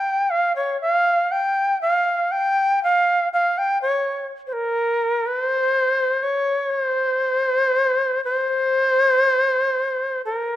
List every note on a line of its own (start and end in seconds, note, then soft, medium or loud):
0.00 0.32 G5 medium
0.30 0.55 F5 medium
0.56 0.80 C#5 medium
0.81 1.33 F5 medium
1.32 1.81 G5 medium
1.81 2.33 F5 medium
2.32 2.82 G5 medium
2.84 3.29 F5 loud
3.33 3.60 F5 medium
3.58 3.81 G5 medium
3.82 4.26 C#5 medium
4.47 4.54 C5 medium
4.53 5.28 A#4 medium
5.27 5.42 B4 loud
5.42 6.24 C5 loud
6.23 6.71 C#5 medium
6.71 6.82 C#5 medium
6.82 8.23 C5 medium
8.25 10.22 C5 loud
10.25 10.56 A#4 medium